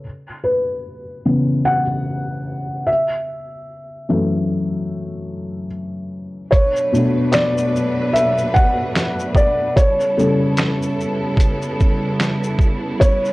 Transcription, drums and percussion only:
6.52 kick, closed hi-hat, shaker
6.76 shaker
6.95 shaker
7.33 finger snap, snare, closed hi-hat, shaker
7.58 shaker
7.76 shaker
8.16 closed hi-hat, shaker
8.38 shaker
8.56 kick, shaker
8.96 finger snap, snare, closed hi-hat, shaker
9.19 shaker
9.35 kick, shaker
9.77 kick, closed hi-hat, shaker
10.00 shaker
10.19 shaker
10.57 finger snap, snare, closed hi-hat, shaker
10.82 shaker
11.00 shaker
11.37 kick, closed hi-hat, shaker
11.62 shaker
11.80 kick, shaker
12.20 finger snap, snare, closed hi-hat, shaker
12.43 shaker
12.59 kick, shaker
13.01 kick, closed hi-hat, shaker
13.25 shaker

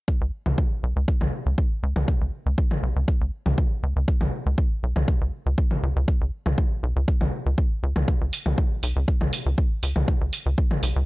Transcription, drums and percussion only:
0.08 kick
0.46 mid tom
0.58 kick
1.08 kick
1.21 mid tom
1.58 kick
1.96 mid tom
2.08 kick
2.58 kick
2.71 mid tom
3.08 kick
3.46 mid tom
3.58 kick
4.08 kick
4.21 mid tom
4.58 kick
4.96 mid tom
5.08 kick
5.58 kick
5.71 mid tom
6.08 kick
6.46 mid tom
6.58 kick
7.08 kick
7.21 mid tom
7.58 kick
7.96 mid tom
8.08 kick
8.33 open hi-hat
8.46 mid tom
8.58 kick
8.83 open hi-hat
9.08 kick
9.21 mid tom
9.33 open hi-hat
9.58 kick
9.83 open hi-hat
9.96 mid tom
10.08 kick
10.33 open hi-hat
10.58 kick
10.71 mid tom
10.83 open hi-hat

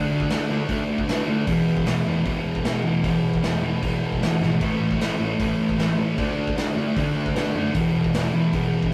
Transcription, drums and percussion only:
0.20 kick
0.30 snare, open hi-hat
0.69 kick, open hi-hat
0.98 kick
1.08 snare, open hi-hat
1.47 kick, open hi-hat
1.77 kick
1.86 snare, open hi-hat
2.25 kick, open hi-hat
2.55 kick
2.64 snare, open hi-hat
3.04 kick, open hi-hat
3.34 kick
3.43 snare, open hi-hat
3.83 kick, open hi-hat
4.12 kick
4.22 snare, open hi-hat
4.43 snare
4.61 kick, open hi-hat
4.91 kick
5.01 snare, open hi-hat
5.40 kick, open hi-hat
5.69 kick
5.79 snare, open hi-hat
6.18 kick, open hi-hat
6.47 kick
6.57 snare, open hi-hat
6.97 kick, open hi-hat
7.26 kick
7.36 snare, open hi-hat
7.74 kick, open hi-hat
8.04 kick
8.14 snare, open hi-hat
8.53 kick, open hi-hat
8.83 kick

